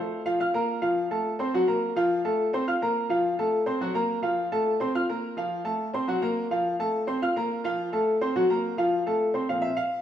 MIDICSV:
0, 0, Header, 1, 2, 480
1, 0, Start_track
1, 0, Tempo, 284225
1, 652, Time_signature, 4, 2, 24, 8
1, 16915, End_track
2, 0, Start_track
2, 0, Title_t, "Upright piano"
2, 0, Program_c, 0, 0
2, 0, Note_on_c, 0, 57, 65
2, 0, Note_on_c, 0, 69, 68
2, 0, Note_on_c, 0, 72, 77
2, 343, Note_off_c, 0, 57, 0
2, 347, Note_off_c, 0, 69, 0
2, 348, Note_off_c, 0, 72, 0
2, 429, Note_on_c, 0, 53, 82
2, 432, Note_on_c, 0, 65, 84
2, 435, Note_on_c, 0, 77, 92
2, 619, Note_off_c, 0, 53, 0
2, 620, Note_off_c, 0, 65, 0
2, 622, Note_off_c, 0, 77, 0
2, 679, Note_on_c, 0, 65, 72
2, 679, Note_on_c, 0, 77, 76
2, 688, Note_on_c, 0, 89, 79
2, 864, Note_off_c, 0, 77, 0
2, 865, Note_off_c, 0, 65, 0
2, 870, Note_off_c, 0, 89, 0
2, 911, Note_on_c, 0, 58, 82
2, 916, Note_on_c, 0, 70, 92
2, 924, Note_on_c, 0, 82, 82
2, 1296, Note_off_c, 0, 58, 0
2, 1300, Note_off_c, 0, 70, 0
2, 1304, Note_off_c, 0, 82, 0
2, 1377, Note_on_c, 0, 53, 80
2, 1382, Note_on_c, 0, 65, 75
2, 1384, Note_on_c, 0, 77, 87
2, 1768, Note_off_c, 0, 53, 0
2, 1771, Note_off_c, 0, 65, 0
2, 1772, Note_off_c, 0, 77, 0
2, 1871, Note_on_c, 0, 69, 72
2, 1872, Note_on_c, 0, 57, 68
2, 1878, Note_on_c, 0, 81, 76
2, 2256, Note_off_c, 0, 69, 0
2, 2257, Note_off_c, 0, 57, 0
2, 2261, Note_off_c, 0, 81, 0
2, 2351, Note_on_c, 0, 60, 92
2, 2357, Note_on_c, 0, 72, 79
2, 2363, Note_on_c, 0, 84, 77
2, 2540, Note_off_c, 0, 60, 0
2, 2543, Note_off_c, 0, 72, 0
2, 2547, Note_off_c, 0, 84, 0
2, 2602, Note_on_c, 0, 54, 87
2, 2608, Note_on_c, 0, 66, 94
2, 2611, Note_on_c, 0, 78, 83
2, 2786, Note_off_c, 0, 54, 0
2, 2790, Note_off_c, 0, 66, 0
2, 2792, Note_off_c, 0, 78, 0
2, 2829, Note_on_c, 0, 58, 80
2, 2832, Note_on_c, 0, 70, 86
2, 2833, Note_on_c, 0, 82, 81
2, 3215, Note_off_c, 0, 58, 0
2, 3217, Note_off_c, 0, 70, 0
2, 3217, Note_off_c, 0, 82, 0
2, 3309, Note_on_c, 0, 53, 87
2, 3316, Note_on_c, 0, 65, 96
2, 3319, Note_on_c, 0, 77, 91
2, 3695, Note_off_c, 0, 53, 0
2, 3699, Note_off_c, 0, 65, 0
2, 3701, Note_off_c, 0, 77, 0
2, 3795, Note_on_c, 0, 57, 78
2, 3798, Note_on_c, 0, 69, 73
2, 3798, Note_on_c, 0, 81, 76
2, 4178, Note_off_c, 0, 57, 0
2, 4180, Note_off_c, 0, 69, 0
2, 4180, Note_off_c, 0, 81, 0
2, 4279, Note_on_c, 0, 60, 87
2, 4286, Note_on_c, 0, 72, 89
2, 4292, Note_on_c, 0, 84, 84
2, 4464, Note_off_c, 0, 60, 0
2, 4468, Note_off_c, 0, 72, 0
2, 4472, Note_off_c, 0, 84, 0
2, 4516, Note_on_c, 0, 65, 71
2, 4522, Note_on_c, 0, 89, 74
2, 4526, Note_on_c, 0, 77, 80
2, 4702, Note_off_c, 0, 65, 0
2, 4706, Note_off_c, 0, 89, 0
2, 4709, Note_off_c, 0, 77, 0
2, 4757, Note_on_c, 0, 58, 84
2, 4767, Note_on_c, 0, 70, 83
2, 4769, Note_on_c, 0, 82, 89
2, 5140, Note_off_c, 0, 58, 0
2, 5145, Note_off_c, 0, 70, 0
2, 5147, Note_off_c, 0, 82, 0
2, 5220, Note_on_c, 0, 53, 84
2, 5226, Note_on_c, 0, 65, 90
2, 5238, Note_on_c, 0, 77, 82
2, 5610, Note_off_c, 0, 53, 0
2, 5613, Note_off_c, 0, 65, 0
2, 5620, Note_off_c, 0, 77, 0
2, 5723, Note_on_c, 0, 57, 67
2, 5724, Note_on_c, 0, 69, 79
2, 5725, Note_on_c, 0, 81, 71
2, 6103, Note_off_c, 0, 57, 0
2, 6104, Note_off_c, 0, 69, 0
2, 6104, Note_off_c, 0, 81, 0
2, 6184, Note_on_c, 0, 72, 86
2, 6189, Note_on_c, 0, 60, 87
2, 6198, Note_on_c, 0, 84, 77
2, 6375, Note_off_c, 0, 72, 0
2, 6378, Note_off_c, 0, 60, 0
2, 6383, Note_off_c, 0, 84, 0
2, 6432, Note_on_c, 0, 54, 94
2, 6441, Note_on_c, 0, 66, 94
2, 6449, Note_on_c, 0, 78, 83
2, 6620, Note_off_c, 0, 54, 0
2, 6626, Note_off_c, 0, 66, 0
2, 6630, Note_off_c, 0, 78, 0
2, 6662, Note_on_c, 0, 58, 94
2, 6671, Note_on_c, 0, 70, 88
2, 6676, Note_on_c, 0, 82, 92
2, 7051, Note_off_c, 0, 58, 0
2, 7056, Note_off_c, 0, 70, 0
2, 7059, Note_off_c, 0, 82, 0
2, 7127, Note_on_c, 0, 53, 78
2, 7139, Note_on_c, 0, 77, 86
2, 7141, Note_on_c, 0, 65, 90
2, 7522, Note_off_c, 0, 53, 0
2, 7529, Note_off_c, 0, 77, 0
2, 7530, Note_off_c, 0, 65, 0
2, 7632, Note_on_c, 0, 57, 76
2, 7636, Note_on_c, 0, 69, 77
2, 7636, Note_on_c, 0, 81, 84
2, 8017, Note_off_c, 0, 57, 0
2, 8019, Note_off_c, 0, 69, 0
2, 8019, Note_off_c, 0, 81, 0
2, 8108, Note_on_c, 0, 60, 87
2, 8120, Note_on_c, 0, 84, 79
2, 8121, Note_on_c, 0, 72, 78
2, 8298, Note_off_c, 0, 60, 0
2, 8305, Note_off_c, 0, 72, 0
2, 8305, Note_off_c, 0, 84, 0
2, 8355, Note_on_c, 0, 65, 85
2, 8360, Note_on_c, 0, 77, 68
2, 8368, Note_on_c, 0, 89, 80
2, 8542, Note_off_c, 0, 65, 0
2, 8545, Note_off_c, 0, 77, 0
2, 8549, Note_off_c, 0, 89, 0
2, 8603, Note_on_c, 0, 70, 86
2, 8606, Note_on_c, 0, 58, 80
2, 8608, Note_on_c, 0, 82, 75
2, 8983, Note_off_c, 0, 70, 0
2, 8985, Note_off_c, 0, 58, 0
2, 8986, Note_off_c, 0, 82, 0
2, 9065, Note_on_c, 0, 53, 80
2, 9069, Note_on_c, 0, 65, 84
2, 9079, Note_on_c, 0, 77, 88
2, 9452, Note_off_c, 0, 53, 0
2, 9455, Note_off_c, 0, 65, 0
2, 9461, Note_off_c, 0, 77, 0
2, 9530, Note_on_c, 0, 57, 77
2, 9537, Note_on_c, 0, 69, 71
2, 9539, Note_on_c, 0, 81, 78
2, 9924, Note_off_c, 0, 57, 0
2, 9928, Note_off_c, 0, 69, 0
2, 9929, Note_off_c, 0, 81, 0
2, 10024, Note_on_c, 0, 60, 85
2, 10035, Note_on_c, 0, 72, 81
2, 10039, Note_on_c, 0, 84, 85
2, 10215, Note_off_c, 0, 60, 0
2, 10221, Note_off_c, 0, 72, 0
2, 10224, Note_off_c, 0, 84, 0
2, 10262, Note_on_c, 0, 54, 91
2, 10271, Note_on_c, 0, 66, 91
2, 10280, Note_on_c, 0, 78, 86
2, 10454, Note_off_c, 0, 54, 0
2, 10459, Note_off_c, 0, 66, 0
2, 10464, Note_off_c, 0, 78, 0
2, 10499, Note_on_c, 0, 58, 95
2, 10512, Note_on_c, 0, 82, 88
2, 10513, Note_on_c, 0, 70, 81
2, 10888, Note_off_c, 0, 58, 0
2, 10896, Note_off_c, 0, 82, 0
2, 10897, Note_off_c, 0, 70, 0
2, 10989, Note_on_c, 0, 53, 84
2, 10993, Note_on_c, 0, 65, 82
2, 10997, Note_on_c, 0, 77, 86
2, 11374, Note_off_c, 0, 53, 0
2, 11377, Note_off_c, 0, 65, 0
2, 11379, Note_off_c, 0, 77, 0
2, 11473, Note_on_c, 0, 57, 73
2, 11475, Note_on_c, 0, 69, 72
2, 11482, Note_on_c, 0, 81, 81
2, 11857, Note_off_c, 0, 57, 0
2, 11858, Note_off_c, 0, 69, 0
2, 11862, Note_off_c, 0, 81, 0
2, 11943, Note_on_c, 0, 60, 85
2, 11951, Note_on_c, 0, 72, 83
2, 11951, Note_on_c, 0, 84, 86
2, 12134, Note_off_c, 0, 60, 0
2, 12139, Note_off_c, 0, 72, 0
2, 12139, Note_off_c, 0, 84, 0
2, 12192, Note_on_c, 0, 65, 77
2, 12198, Note_on_c, 0, 77, 81
2, 12207, Note_on_c, 0, 89, 80
2, 12379, Note_off_c, 0, 65, 0
2, 12383, Note_off_c, 0, 77, 0
2, 12388, Note_off_c, 0, 89, 0
2, 12434, Note_on_c, 0, 58, 89
2, 12434, Note_on_c, 0, 70, 87
2, 12445, Note_on_c, 0, 82, 88
2, 12817, Note_off_c, 0, 58, 0
2, 12817, Note_off_c, 0, 70, 0
2, 12824, Note_off_c, 0, 82, 0
2, 12908, Note_on_c, 0, 65, 99
2, 12914, Note_on_c, 0, 53, 80
2, 12919, Note_on_c, 0, 77, 86
2, 13294, Note_off_c, 0, 65, 0
2, 13297, Note_off_c, 0, 53, 0
2, 13300, Note_off_c, 0, 77, 0
2, 13383, Note_on_c, 0, 69, 75
2, 13386, Note_on_c, 0, 57, 74
2, 13392, Note_on_c, 0, 81, 78
2, 13771, Note_off_c, 0, 69, 0
2, 13772, Note_off_c, 0, 57, 0
2, 13776, Note_off_c, 0, 81, 0
2, 13871, Note_on_c, 0, 60, 85
2, 13873, Note_on_c, 0, 72, 90
2, 13878, Note_on_c, 0, 84, 80
2, 14058, Note_off_c, 0, 60, 0
2, 14059, Note_off_c, 0, 72, 0
2, 14063, Note_off_c, 0, 84, 0
2, 14115, Note_on_c, 0, 66, 90
2, 14116, Note_on_c, 0, 54, 90
2, 14126, Note_on_c, 0, 78, 84
2, 14301, Note_off_c, 0, 54, 0
2, 14301, Note_off_c, 0, 66, 0
2, 14307, Note_off_c, 0, 78, 0
2, 14352, Note_on_c, 0, 58, 85
2, 14360, Note_on_c, 0, 70, 79
2, 14360, Note_on_c, 0, 82, 89
2, 14736, Note_off_c, 0, 58, 0
2, 14740, Note_off_c, 0, 70, 0
2, 14740, Note_off_c, 0, 82, 0
2, 14817, Note_on_c, 0, 53, 86
2, 14827, Note_on_c, 0, 65, 88
2, 14832, Note_on_c, 0, 77, 88
2, 15207, Note_off_c, 0, 53, 0
2, 15213, Note_off_c, 0, 65, 0
2, 15215, Note_off_c, 0, 77, 0
2, 15307, Note_on_c, 0, 57, 72
2, 15308, Note_on_c, 0, 69, 73
2, 15315, Note_on_c, 0, 81, 75
2, 15693, Note_off_c, 0, 57, 0
2, 15694, Note_off_c, 0, 69, 0
2, 15697, Note_off_c, 0, 81, 0
2, 15773, Note_on_c, 0, 60, 81
2, 15774, Note_on_c, 0, 72, 73
2, 15787, Note_on_c, 0, 84, 72
2, 15967, Note_off_c, 0, 60, 0
2, 15968, Note_off_c, 0, 72, 0
2, 15976, Note_off_c, 0, 84, 0
2, 16023, Note_on_c, 0, 46, 58
2, 16029, Note_on_c, 0, 77, 84
2, 16038, Note_on_c, 0, 53, 56
2, 16045, Note_on_c, 0, 60, 61
2, 16242, Note_on_c, 0, 76, 94
2, 16252, Note_off_c, 0, 77, 0
2, 16335, Note_off_c, 0, 46, 0
2, 16343, Note_off_c, 0, 53, 0
2, 16347, Note_off_c, 0, 60, 0
2, 16478, Note_off_c, 0, 76, 0
2, 16493, Note_on_c, 0, 77, 94
2, 16915, Note_off_c, 0, 77, 0
2, 16915, End_track
0, 0, End_of_file